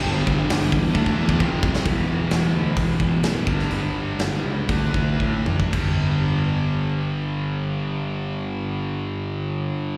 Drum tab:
CC |----------------|----------------|----------------|x---------------|
HH |----o-----------|o---o---o---o---|o---o---o-------|----------------|
SD |----o----------o|----o-------o--o|----o-----------|----------------|
T2 |----------------|----------------|--------------o-|----------------|
BD |--o---o-oo-oo-o-|o-------o-o---o-|--------o-o-o--o|o---------------|

CC |----------------|
HH |----------------|
SD |----------------|
T2 |----------------|
BD |----------------|